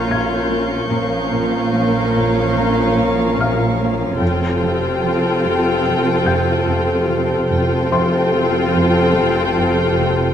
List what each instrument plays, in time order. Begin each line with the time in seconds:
Already playing: double bass section A#1, cello section A#2, viola section C#4 F4, glass harmonica F4 A#4 C#5, violin section A#4 F5 C#6 G6, felt piano D#6
0.11 cello section A#2, felt piano G#6
0.52 cello section A#3
0.92 double bass section A#1, cello section A#2, viola section F3 C#4, glass harmonica F4 A#4 C#5, violin section A#4 F5
1.34 cello section A#2
1.75 cello section A#3
2.17 cello section A#2
2.58 cello section A#2
2.99 cello section A#2
3.40 cello section A#2, felt piano F5 F6
3.81 cello section A#3
4.20 double bass section F1, cello section F2, viola section C4 F4, glass harmonica G4 A4 C5, violin section A4 G5
4.63 cello section F2
5.04 cello section F3
5.45 cello section F2
5.87 cello section F2
6.26 cello section F2, felt piano G5 G6
6.69 cello section F2
7.09 cello section F3
7.49 double bass section F1, cello section F2, viola section C4 F4, glass harmonica G4 A4 C5, violin section A4 G5
7.91 cello section F2, felt piano C5 C6
8.33 cello section F3
8.75 cello section F2
9.15 cello section F2
9.56 cello section F2
9.98 cello section F2